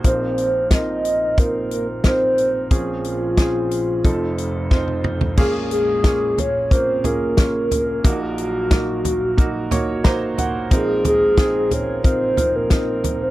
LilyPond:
<<
  \new Staff \with { instrumentName = "Soft synth lead" } { \time 4/4 \key bes \minor \tempo 4 = 90 c''4 ees''4 bes'8 bes'8 c''4 | f'2.~ f'8 r8 | aes'8 aes'4 des''8 c''8 bes'4. | bes'8 ges'2. r8 |
aes'8 aes'4 des''8 c''8. bes'4 c''16 | }
  \new Staff \with { instrumentName = "Upright piano" } { \time 4/4 \key bes \minor << { r1 | r1 | r1 | r2. bes''8 ges''8 |
r1 | } \\ { <c' ees' f' bes'>4 <c' ees' f' bes'>4 <c' ees' f' bes'>4 <c' ees' f' bes'>4 | <c' des' f' aes'>4 <c' des' f' aes'>4 <c' ees' f' a'>4 <c' ees' f' c''>4 | <bes des' f' aes'>4 <bes des' f' aes'>4 <bes des' f' bes'>8 <bes des' f' aes'>8 <bes des' f' bes'>4 | <bes ees' ges' bes'>4 <bes ees' ges' bes'>4 <bes ees' ges' bes'>8 <bes ees' ges' des''>8 <bes ees' ges' c''>4 |
<c' ees' f' bes'>4 <c' ees' f' aes'>4 <c' ees' f' bes'>8 <c' ees' f' bes'>8 <c' ees' f' bes'>4 | } >> }
  \new Staff \with { instrumentName = "Upright piano" } { \clef bass \time 4/4 \key bes \minor <bes,, bes,>1 | <bes,, bes,>2 <f,, f,>2 | <bes,, bes,>1 | <bes,, bes,>1 |
<bes,, bes,>1 | }
  \new DrumStaff \with { instrumentName = "Drums" } \drummode { \time 4/4 <hh bd>8 hh8 <hh bd sn>8 hh8 <hh bd>8 hh8 <hh bd sn>8 hh8 | <hh bd>8 hh8 <hh bd sn>8 hh8 <hh bd>8 hh8 <bd sn>16 tommh16 toml16 tomfh16 | <cymc bd>8 hh8 <hh bd sn>8 <hh tomfh>8 <hh bd>8 <hh tomfh>8 <hh bd sn>8 <hh tomfh>8 | <hh bd>8 hh8 <hh bd sn>8 <hh tomfh>8 <hh bd>8 <hh tomfh>8 <hh bd sn>8 <hh tomfh>8 |
<hh bd>8 <hh tomfh>8 <hh bd sn>8 <hh tomfh>8 <hh bd>8 <hh tomfh>8 <hh bd sn>8 <hh tomfh>8 | }
>>